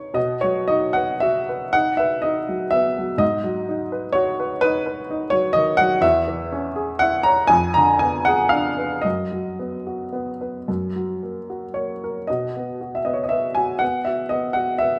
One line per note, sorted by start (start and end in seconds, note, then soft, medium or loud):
0.00 0.11 B2 soft
0.00 0.18 D#3 soft
0.00 0.16 D#4 soft
0.00 0.18 B4 soft
0.00 0.15 C#5 medium
0.14 3.16 B2 medium
0.14 0.42 D#5 medium
0.41 0.86 F#3 medium
0.41 0.68 C#5 medium
0.68 1.12 D#4 medium
0.68 0.95 D#5 medium
0.93 1.38 B4 medium
0.93 1.21 F#5 medium
1.20 1.64 F#4 medium
1.20 1.73 E5 medium
1.49 1.90 B4 soft
1.73 2.15 D#4 medium
1.73 1.99 F#5 loud
1.97 2.39 B4 medium
1.97 2.23 E5 medium
2.22 2.64 D#4 soft
2.22 2.72 D#5 medium
2.49 2.88 F#3 medium
2.71 3.12 B3 medium
2.71 3.20 E5 loud
2.98 3.22 F#3 soft
3.18 5.97 G#2 medium
3.18 4.14 D#5 loud
3.44 3.82 F#3 medium
3.69 4.06 D#4 medium
3.92 4.29 B4 medium
4.12 4.53 F#4 medium
4.12 4.61 C#5 loud
4.40 4.60 B4 medium
4.61 5.00 D#4 medium
4.61 4.85 B4 loud
4.86 5.23 B4 medium
5.10 5.47 D#4 medium
5.30 5.70 F#3 medium
5.30 5.55 C#5 loud
5.53 5.94 D#3 medium
5.53 5.78 D#5 loud
5.77 6.04 F#3 medium
5.77 6.02 F#5 loud
6.01 7.46 E2 medium
6.01 7.00 E5 loud
6.28 6.66 E3 medium
6.52 6.91 C#4 medium
6.76 7.16 G#4 medium
6.99 7.42 E4 medium
6.99 7.25 F#5 loud
7.23 7.51 C#5 medium
7.23 7.50 A#5 loud
7.47 9.00 F2 medium
7.47 7.75 G#5 loud
7.74 8.17 D3 medium
7.74 8.01 A#5 loud
7.99 8.43 B3 soft
7.99 8.26 G#5 loud
8.25 8.68 G#4 medium
8.25 8.52 F#5 loud
8.49 8.94 D4 medium
8.49 9.03 F5 medium
8.78 9.05 B4 soft
9.02 10.64 F#2 medium
9.02 10.66 D#5 medium
9.32 9.76 F#3 soft
9.59 10.03 B3 soft
9.87 10.30 F#4 soft
10.13 10.56 B3 soft
10.41 10.68 B4 soft
10.68 12.24 F#2 medium
10.96 11.38 F#3 soft
11.23 11.65 A#3 soft
11.50 11.92 F#4 soft
11.74 12.18 A#3 soft
11.74 12.27 C#5 medium
12.04 12.29 A#4 soft
12.27 14.99 B2 medium
12.27 12.93 D#5 medium
12.57 12.96 B3 soft
12.81 13.21 F#4 soft
12.95 13.03 E5 medium
13.05 13.46 B3 soft
13.05 13.13 D#5 medium
13.13 13.22 C#5 medium
13.24 13.32 D#5 medium
13.29 13.72 B4 soft
13.29 13.55 E5 medium
13.55 13.97 F#4 soft
13.55 13.80 G#5 medium
13.79 14.21 B3 soft
13.79 14.05 F#5 medium
14.05 14.46 F#4 soft
14.05 14.30 E5 medium
14.29 14.71 B3 soft
14.29 14.55 D#5 medium
14.53 14.95 F#4 soft
14.53 14.79 F#5 medium
14.78 14.99 B3 soft
14.78 14.99 E5 medium